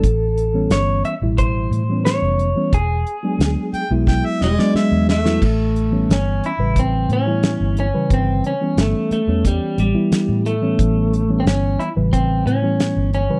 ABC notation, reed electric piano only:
X:1
M:4/4
L:1/16
Q:1/4=89
K:Amix
V:1 name="Reed electric piano" clef=bass
z3 [E,G,B,C]4 [B,,E,G,E]4 [E,G,B,C]4 [E,G,B,C] | z3 [F,^G,B,D]4 [F,G,B,E]4 [F,G,B,D]4 [F,G,B,E] | z3 [E,G,B,C]4 [C,E,G,B]4 [E,G,B,E]4 [C,E,G,B]- | [C,E,G,B]3 [E,G,B,C]4 [E,G,B,C]4 [E,G,B,E]4 [E,G,B,C]- |
[E,G,B,C]3 [E,G,B,C]4 [C,E,G,B]4 [E,G,B,C]4 [C,E,G,B] |]